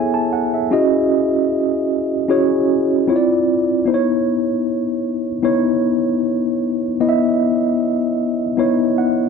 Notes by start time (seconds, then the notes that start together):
Already playing: B3 E4 G#4 A4 C#5 E5 G#5
0.14 A5
0.33 F#5
0.54 E5
0.71 C#4 E4 F#4 G#4 D#5
2.29 C#4 E4 F#4 G#4 C#5
3.07 C4 E4 F4 C#5
3.16 D5
3.85 B3 D#4 E4 C5
3.94 C#5
5.43 B3 D#4 E4 C#5
7.00 B3 E4 D#5
7.09 E5
8.57 B3 D#4 E4 C#5
8.98 F#5